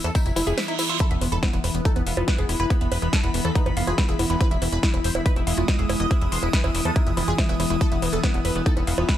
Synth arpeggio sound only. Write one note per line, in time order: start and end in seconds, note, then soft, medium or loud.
0.15 0.22 D#4 loud
0.36 0.43 E4 loud
0.47 0.51 E5 loud
0.58 0.65 E5 loud
0.68 0.72 D#4 medium
0.79 0.86 E4 medium
0.89 0.96 F4 loud
1.00 1.07 E4 loud
1.11 1.18 E5 medium
1.32 1.39 E4 medium
1.43 1.50 E4 medium
1.53 1.63 E4 medium
1.85 1.92 D#4 loud
2.06 2.13 F5 loud
2.17 2.27 F4 loud
2.28 2.35 E4 medium
2.38 2.45 G#4 loud
2.49 2.53 E4 loud
2.60 2.64 E4 loud
2.70 2.77 E4 loud
2.81 2.88 E5 medium
3.02 3.09 E4 medium
3.13 3.20 E4 medium
3.24 3.34 E4 medium
3.55 3.62 D#4 loud
3.77 3.84 F5 loud
3.87 3.97 F4 loud
3.98 4.05 E4 medium
4.09 4.16 G#4 loud
4.19 4.23 E4 loud
4.30 4.34 E4 loud
4.41 4.48 E4 loud
4.51 4.58 E5 medium
4.72 4.79 E4 medium
4.83 4.90 E4 medium
4.94 5.04 E4 medium
5.26 5.33 D#4 loud
5.47 5.54 F5 loud
5.58 5.68 F4 loud
5.68 5.75 E4 medium
5.79 5.86 G#4 loud
5.89 5.94 E4 loud
6.00 6.04 E4 loud
6.11 6.18 E4 loud
6.21 6.28 E5 medium
6.43 6.50 E4 medium
6.53 6.60 E4 medium
6.64 6.74 E4 medium
6.96 7.03 D#4 loud
7.17 7.21 E4 loud
7.28 7.35 F4 medium
7.38 7.45 E4 medium
7.49 7.59 B4 medium
7.60 7.67 E4 loud
7.70 7.75 E4 loud
7.81 7.88 E4 loud
7.92 7.99 E5 medium
8.13 8.20 E4 medium
8.24 8.30 E4 medium
8.34 8.44 E4 medium
8.66 8.73 D#4 loud
8.87 8.94 F5 loud
8.98 9.08 F4 loud
9.09 9.16 E4 medium